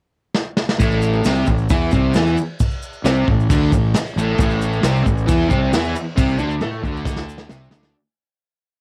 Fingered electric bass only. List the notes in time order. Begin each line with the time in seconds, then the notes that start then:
0.80 A1
1.25 C2
1.48 A1
1.70 E2
1.93 C2
2.15 E2
3.04 C2
3.27 A1
3.50 D2
3.72 A1
4.16 A1
4.38 A1
4.83 C2
5.07 A1
5.29 E2
5.51 C2
5.74 E2
6.18 C2
6.40 D2
6.64 A2
6.83 D2
7.50 C2
7.72 D2